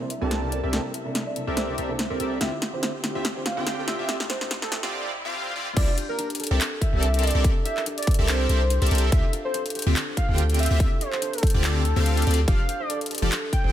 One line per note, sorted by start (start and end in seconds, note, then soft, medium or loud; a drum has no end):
0.00 2.38 C3 medium
0.00 2.38 G3 medium
0.00 2.37 A#3 medium
0.00 0.09 A#3 medium
0.00 2.38 C4 medium
0.00 1.64 D4 loud
0.00 2.38 D4 medium
0.00 0.10 D4 medium
0.00 0.10 E4 medium
0.00 0.12 A#4 medium
0.00 0.10 C5 medium
0.00 4.89 E5 medium
0.00 riser medium
0.10 0.36 E5 medium
0.10 closed hi-hat medium
0.20 0.61 C2 medium
0.20 0.30 C3 medium
0.20 0.30 A#3 medium
0.20 0.61 C4 medium
0.20 0.31 D4 medium
0.20 0.31 E4 medium
0.20 0.61 G4 medium
0.20 0.61 A4 medium
0.20 0.31 A4 loud
0.20 0.61 A#4 medium
0.20 0.61 D5 medium
0.20 0.61 A5 loud
0.31 snare medium
0.31 closed hi-hat medium
0.41 0.51 C3 medium
0.41 0.51 A#3 medium
0.41 0.52 D4 medium
0.41 0.52 E4 medium
0.41 0.52 A#4 medium
0.52 0.78 D5 medium
0.52 closed hi-hat medium
0.63 0.79 C2 medium
0.63 0.81 C4 medium
0.63 0.81 G4 medium
0.63 0.81 A4 medium
0.63 0.81 A#4 medium
0.63 0.81 D5 medium
0.63 0.81 E5 medium
0.72 0.89 C3 medium
0.72 0.89 A#3 medium
0.72 0.89 D4 medium
0.72 0.90 E4 medium
0.72 0.90 A4 loud
0.72 snare medium
0.72 closed hi-hat medium
0.94 1.13 E5 loud
0.94 closed hi-hat medium
1.04 1.20 C3 medium
1.04 1.21 A#3 medium
1.04 1.21 D4 medium
1.04 1.21 E4 medium
1.04 1.21 A4 medium
1.15 snare medium
1.15 closed hi-hat medium
1.26 1.46 D5 loud
1.35 1.52 C3 medium
1.35 1.52 A#3 medium
1.35 1.52 D4 medium
1.35 1.53 E4 medium
1.35 1.53 A4 medium
1.35 closed hi-hat medium
1.47 1.76 C2 loud
1.47 1.76 C4 loud
1.47 1.76 G4 medium
1.47 1.76 A4 medium
1.47 1.76 A#4 medium
1.47 1.76 D5 medium
1.47 1.76 E5 loud
1.57 2.33 C5 loud
1.57 snare medium
1.57 closed hi-hat medium
1.67 1.77 C3 medium
1.67 1.77 A#3 medium
1.67 1.77 D4 medium
1.67 1.78 E4 medium
1.67 1.78 C5 medium
1.78 2.08 C2 loud
1.78 1.90 C4 medium
1.78 1.90 G4 medium
1.78 1.90 A4 medium
1.78 1.90 A#4 medium
1.78 1.90 D5 medium
1.78 1.90 E5 medium
1.78 closed hi-hat medium
1.88 1.98 C3 medium
1.88 1.98 A#3 medium
1.88 1.98 D4 medium
1.88 1.99 E4 medium
1.88 1.99 A4 loud
1.99 snare medium
1.99 closed hi-hat medium
2.09 2.18 C2 medium
2.09 2.19 C3 medium
2.09 2.19 A#3 medium
2.09 2.18 C4 medium
2.09 2.19 D4 medium
2.09 2.20 E4 medium
2.09 2.18 G4 medium
2.09 2.18 A4 medium
2.09 2.18 A#4 medium
2.09 2.20 A#4 medium
2.09 2.18 D5 medium
2.09 2.18 E5 medium
2.20 2.39 C2 medium
2.20 2.39 C4 medium
2.20 2.39 G4 medium
2.20 2.39 A4 medium
2.20 2.39 A#4 medium
2.20 2.39 D5 medium
2.20 2.39 E5 loud
2.20 closed hi-hat medium
2.40 2.51 D2 medium
2.40 2.57 D3 medium
2.40 2.53 D3 medium
2.40 4.90 D3 medium
2.40 2.57 C4 medium
2.40 2.53 C4 medium
2.40 4.90 C4 medium
2.40 2.57 E4 medium
2.40 2.53 F4 medium
2.40 4.90 F4 medium
2.40 2.57 F4 medium
2.40 2.53 G4 medium
2.40 4.90 G4 medium
2.40 2.58 G4 loud
2.40 2.53 E5 medium
2.40 2.60 E5 loud
2.40 snare medium
2.40 closed hi-hat medium
2.62 snare medium
2.62 closed hi-hat medium
2.72 2.88 D3 medium
2.72 2.88 C4 medium
2.72 2.89 E4 medium
2.72 2.89 F4 medium
2.72 2.89 G4 medium
2.72 2.93 C5 medium
2.83 snare medium
2.83 closed hi-hat medium
3.03 3.20 D3 medium
3.03 3.20 C4 medium
3.03 3.20 E4 medium
3.03 3.20 F4 medium
3.03 3.21 G4 medium
3.03 snare medium
3.03 closed hi-hat medium
3.15 3.24 D2 loud
3.15 3.26 D3 medium
3.15 3.26 C4 medium
3.15 3.26 F4 medium
3.15 3.26 G4 medium
3.15 3.26 E5 loud
3.25 snare medium
3.25 closed hi-hat medium
3.35 3.45 D3 medium
3.35 3.45 C4 medium
3.35 3.45 E4 medium
3.35 3.45 F4 medium
3.35 3.46 C5 medium
3.46 3.72 F5 medium
3.46 snare medium
3.46 closed hi-hat medium
3.56 3.97 D2 loud
3.56 3.66 D3 medium
3.56 3.96 D3 loud
3.56 3.66 C4 medium
3.56 3.96 C4 medium
3.56 3.66 E4 medium
3.56 3.96 F4 medium
3.56 3.67 F4 medium
3.56 3.96 G4 medium
3.56 3.67 G4 loud
3.56 3.96 G5 loud
3.67 snare medium
3.67 closed hi-hat medium
3.77 3.87 D3 medium
3.77 3.87 C4 medium
3.77 3.87 E4 medium
3.77 3.87 F4 medium
3.77 3.88 A4 medium
3.88 4.14 E5 loud
3.88 snare medium
3.88 closed hi-hat medium
3.99 4.15 D2 loud
3.99 4.17 D3 medium
3.99 4.17 C4 medium
3.99 4.17 F4 medium
3.99 4.17 G4 medium
3.99 4.17 E5 loud
4.08 4.25 D3 medium
4.08 4.25 C4 medium
4.08 4.25 E4 medium
4.08 4.25 F4 medium
4.08 4.26 G4 loud
4.08 snare medium
4.08 closed hi-hat medium
4.20 snare medium
4.30 4.49 C5 loud
4.30 snare loud
4.30 closed hi-hat medium
4.40 4.56 D3 medium
4.40 4.56 C4 medium
4.40 4.57 E4 medium
4.40 4.57 F4 medium
4.40 4.57 G4 medium
4.40 snare medium
4.51 snare loud
4.51 closed hi-hat medium
4.62 4.81 A4 loud
4.62 snare medium
4.70 4.87 D3 medium
4.70 4.88 C4 medium
4.70 4.88 E4 medium
4.70 4.88 F4 medium
4.70 4.88 G4 medium
4.70 snare loud
4.70 closed hi-hat medium
4.83 4.93 D2 loud
4.83 5.11 D3 loud
4.83 5.11 C4 medium
4.83 5.11 F4 medium
4.83 5.11 G4 medium
4.83 5.11 D5 loud
4.83 snare medium
5.25 5.53 D3 loud
5.25 5.53 C4 medium
5.25 5.53 F4 medium
5.25 5.53 G4 medium
5.25 5.53 F5 loud
5.56 5.68 D3 loud
5.56 5.68 C4 medium
5.56 5.68 F4 medium
5.56 5.68 G4 medium
5.56 5.68 D5 loud
5.76 5.87 C2 loud
5.76 5.89 C4 medium
5.76 6.18 D4 medium
5.76 5.89 G4 medium
5.76 5.89 A4 medium
5.76 5.89 A#4 medium
5.76 5.96 D5 loud
5.76 5.89 D5 medium
5.76 5.89 E5 medium
5.76 kick loud
5.76 closed hi-hat medium
5.76 crash loud
5.97 6.81 G4 medium
5.97 closed hi-hat medium
6.09 6.28 A#4 loud
6.09 6.45 A#4 medium
6.18 6.60 D4 medium
6.18 closed hi-hat medium
6.30 closed hi-hat medium
6.35 closed hi-hat medium
6.39 6.99 A4 medium
6.39 closed hi-hat medium
6.44 closed hi-hat medium
6.47 closed hi-hat medium
6.51 6.59 C2 loud
6.51 6.61 C4 medium
6.51 6.61 G4 medium
6.51 6.61 A4 medium
6.51 6.61 A#4 medium
6.51 6.61 D5 medium
6.51 6.61 E5 loud
6.60 7.02 D4 medium
6.60 clap loud
6.60 closed hi-hat medium
6.81 7.65 G4 medium
6.81 7.25 E5 medium
6.81 kick medium
6.81 closed hi-hat medium
6.93 7.33 C2 medium
6.93 7.32 C4 loud
6.93 7.32 G4 medium
6.93 7.32 A4 medium
6.93 7.30 A#4 medium
6.93 7.32 A#4 medium
6.93 7.32 D5 medium
6.93 7.32 A5 loud
7.02 7.44 D4 medium
7.02 closed hi-hat medium
7.14 closed hi-hat medium
7.19 closed hi-hat medium
7.23 7.83 A4 medium
7.23 7.50 D5 loud
7.23 closed hi-hat medium
7.27 closed hi-hat medium
7.31 closed hi-hat medium
7.35 7.50 C2 loud
7.35 7.53 C4 medium
7.35 7.53 G4 medium
7.35 7.53 A4 medium
7.35 7.53 A#4 medium
7.35 7.53 D5 medium
7.35 7.53 E5 loud
7.44 7.86 D4 medium
7.44 kick loud
7.44 closed hi-hat medium
7.65 8.49 G4 medium
7.65 7.85 E5 medium
7.65 closed hi-hat medium
7.77 8.13 A#4 medium
7.77 clap soft
7.86 8.28 D4 medium
7.86 closed hi-hat medium
7.98 8.17 D5 loud
7.98 closed hi-hat medium
8.03 closed hi-hat medium
8.07 8.67 A4 medium
8.07 kick loud
8.07 closed hi-hat medium
8.11 closed hi-hat medium
8.14 closed hi-hat medium
8.19 8.47 C2 loud
8.19 8.47 C4 loud
8.19 8.47 G4 medium
8.19 8.47 A4 loud
8.19 8.47 A#4 loud
8.19 8.47 D5 medium
8.19 8.47 E5 loud
8.28 8.70 D4 medium
8.28 9.05 C5 loud
8.28 clap loud
8.28 closed hi-hat medium
8.49 8.79 C2 loud
8.49 8.61 C4 medium
8.49 9.75 G4 medium
8.49 8.61 G4 medium
8.49 8.61 A4 medium
8.49 8.61 A#4 medium
8.49 8.61 D5 medium
8.49 8.61 E5 loud
8.49 closed hi-hat medium
8.61 8.97 A#4 medium
8.70 9.12 D4 medium
8.70 closed hi-hat medium
8.82 8.89 C2 medium
8.82 8.90 C4 medium
8.82 8.90 G4 medium
8.82 8.90 A4 medium
8.82 8.90 A#4 medium
8.82 8.90 D5 medium
8.82 8.90 E5 medium
8.82 closed hi-hat medium
8.86 closed hi-hat medium
8.91 9.10 C2 loud
8.91 9.10 C4 medium
8.91 9.10 G4 medium
8.91 9.44 A4 medium
8.91 9.10 A4 medium
8.91 9.10 A#4 medium
8.91 9.10 D5 medium
8.91 9.10 E5 loud
8.91 closed hi-hat medium
8.95 closed hi-hat medium
8.98 closed hi-hat medium
9.12 9.22 D2 loud
9.12 9.24 D3 medium
9.12 9.32 E5 loud
9.12 kick loud
9.12 closed hi-hat medium
9.33 10.17 F4 medium
9.33 closed hi-hat medium
9.44 10.28 A4 medium
9.44 9.64 C5 medium
9.54 9.96 D4 medium
9.54 closed hi-hat medium
9.66 closed hi-hat soft
9.70 closed hi-hat medium
9.75 10.58 G4 medium
9.75 closed hi-hat medium
9.79 closed hi-hat medium
9.82 closed hi-hat medium
9.86 9.95 D2 loud
9.86 9.97 D3 medium
9.86 9.97 C4 medium
9.86 9.97 F4 medium
9.86 9.97 G4 medium
9.86 9.97 E5 loud
9.96 10.37 D4 medium
9.96 clap loud
9.96 closed hi-hat medium
10.17 11.00 F4 medium
10.17 10.43 F5 loud
10.17 kick medium
10.17 closed hi-hat medium
10.28 10.68 D2 loud
10.28 10.68 D3 loud
10.28 10.68 C4 medium
10.28 10.68 F4 medium
10.28 10.68 G4 medium
10.28 11.12 A4 medium
10.28 10.68 G5 loud
10.38 10.80 D4 medium
10.38 closed hi-hat medium
10.50 closed hi-hat medium
10.54 closed hi-hat medium
10.59 11.42 G4 medium
10.59 11.03 E5 loud
10.59 closed hi-hat medium
10.63 closed hi-hat medium
10.66 closed hi-hat medium
10.71 10.86 D2 loud
10.71 10.88 D3 medium
10.71 10.88 C4 medium
10.71 10.88 F4 medium
10.71 10.88 G4 medium
10.71 10.88 E5 loud
10.80 11.21 D4 medium
10.80 kick loud
10.80 closed hi-hat medium
11.01 12.26 F4 medium
11.01 11.35 C5 medium
11.01 closed hi-hat medium
11.12 12.89 A4 medium
11.12 clap soft
11.22 11.63 D4 medium
11.22 closed hi-hat medium
11.33 11.53 A4 loud
11.33 closed hi-hat soft
11.38 closed hi-hat medium
11.43 11.84 G4 medium
11.43 kick loud
11.43 closed hi-hat soft
11.47 closed hi-hat medium
11.50 closed hi-hat medium
11.54 11.94 D2 loud
11.54 11.83 D3 loud
11.54 11.83 C4 medium
11.54 11.83 F4 medium
11.54 11.83 G4 medium
11.54 11.83 D5 loud
11.64 12.17 D4 medium
11.64 12.40 A4 loud
11.64 clap loud
11.64 closed hi-hat medium
11.85 12.05 G4 medium
11.85 closed hi-hat medium
11.96 12.25 D2 loud
11.96 12.25 D3 loud
11.96 12.25 C4 medium
11.96 12.25 F4 medium
11.96 12.25 G4 medium
11.96 12.80 C5 loud
11.96 12.25 F5 loud
12.06 12.68 G4 medium
12.06 closed hi-hat medium
12.17 12.47 D4 medium
12.17 closed hi-hat medium
12.22 closed hi-hat medium
12.26 12.46 D2 medium
12.26 12.39 D3 medium
12.26 12.39 C4 medium
12.26 12.38 F4 medium
12.26 12.39 F4 medium
12.26 12.39 G4 medium
12.26 12.39 D5 loud
12.26 closed hi-hat soft
12.31 closed hi-hat medium
12.34 closed hi-hat medium
12.38 13.72 F4 medium
12.48 12.58 F1 medium
12.48 12.60 F3 medium
12.48 13.31 D4 medium
12.48 12.60 F4 medium
12.48 12.60 G4 medium
12.48 12.60 A4 medium
12.48 12.60 D5 medium
12.48 12.82 F5 loud
12.48 kick loud
12.48 closed hi-hat medium
12.69 13.52 G4 medium
12.69 closed hi-hat medium
12.80 13.64 C5 medium
12.80 12.99 D5 loud
12.90 13.10 A4 medium
12.90 closed hi-hat medium
13.01 closed hi-hat soft
13.06 closed hi-hat medium
13.11 13.72 A4 medium
13.11 closed hi-hat soft
13.15 closed hi-hat medium
13.18 closed hi-hat medium
13.22 13.31 F1 loud
13.22 13.33 F3 medium
13.22 13.33 F4 medium
13.22 13.33 G4 medium
13.22 13.33 A4 medium
13.22 13.33 D5 loud
13.32 13.72 D4 medium
13.32 clap loud
13.32 closed hi-hat medium
13.53 13.72 G4 medium
13.53 13.72 G5 medium
13.53 kick medium
13.53 closed hi-hat medium
13.64 13.72 F1 loud
13.64 13.72 F3 loud
13.64 13.72 F4 medium
13.64 13.72 G4 medium
13.64 13.72 A4 medium
13.64 13.72 C5 medium
13.64 13.72 G5 loud